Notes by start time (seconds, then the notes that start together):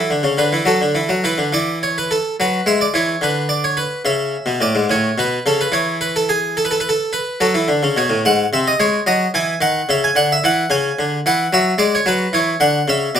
Already playing: A4
0.10 D3
0.23 C#3
0.38 D3 B4
0.53 E3
0.65 F#3 A4
0.81 D3
0.95 E3
1.09 F#3
1.24 E3 B4
1.38 D3
1.53 E3 D5
1.83 C#5
1.98 B4
2.11 A4
2.40 F#3 B4
2.66 G#3 E5
2.81 D5
2.94 E3 C#5
3.21 D3 B4
3.49 D5
3.64 C#5
3.77 B4
4.05 C#3 E5
4.46 B2
4.61 A2 D5
4.75 G#2
4.90 A2 C#5
5.18 B2 B4
5.46 C#3 A4
5.61 B4
5.72 E3 C#5
6.01 B4
6.16 A4
6.29 G#4
6.57 A4
6.65 B4
6.71 A4
6.80 B4
6.89 A4
7.13 B4
7.41 F#3 A4
7.54 E3
7.68 D3
7.83 C#3
7.97 B2 C#5
8.10 A2
8.25 G#2 F#5
8.53 C3 E5
8.68 D#5
8.80 G#3 C#5
9.07 F#3 D#5
9.34 E3 G#5
9.61 D#3 F#5
9.89 C#3 E5
10.04 G#5
10.15 D3 F#5
10.32 E5
10.44 E3 F#5
10.70 C#3 G#5
10.99 D3
11.26 E3 F#5
11.53 F#3 E5
11.78 G#3 D5
11.95 C#5
12.06 F#3 B4
12.33 E3 C#5
12.60 D3 F#5
12.88 C#3 E5
13.15 B2 D5